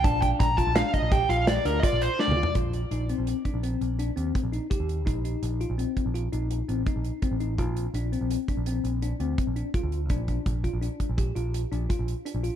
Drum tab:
HH |x--x--x--x--x--x--x--x--x--x--x--x--------|x--x--x--x--x--x--x--x--x--x--x--x--x--x--|x--x--x--x--x--x--x--x--x--x--x--x--x--x--|x--x--x--x--x--x--x--x--x--x--x--x--x--x--|
SD |------o-----o-----------o-----o-----o-----|------------------------------------------|------------------------------------------|------------------------------------------|
T2 |--------------------------------------o---|------------------------------------------|------------------------------------------|------------------------------------------|
FT |----------------------------------------o-|------------------------------------------|------------------------------------------|------------------------------------------|
BD |o--o--o--o-----o--o-----------o-----------|o--------------o--------------o-----o-----|o--------------o--------------o-----o-----|o--------------o--------------o-----o-----|

HH |x--x--x--x--x--x--x--x--x--x--x--x--x--x--|
SD |------------------------------------------|
T2 |------------------------------------------|
FT |------------------------------------------|
BD |o--o--o--o-----o--o-----------o-----------|